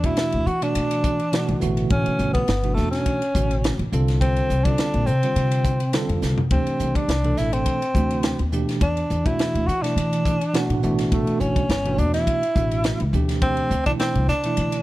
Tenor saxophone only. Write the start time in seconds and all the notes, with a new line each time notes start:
0.05 E4
0.47 F#4
0.63 D4
1.91 C#4
2.34 B3
2.75 A3
2.91 C#4
4.21 C4
4.64 D4
5.07 C4
6.52 C4
6.96 D4
7.38 E4
7.53 C4
8.82 D4
9.26 E4
9.68 F#4
9.83 D4
11.12 A3
11.40 C#4
11.98 D4
12.14 E4
13.42 C4
13.86 D4
14.00 C4
14.29 D4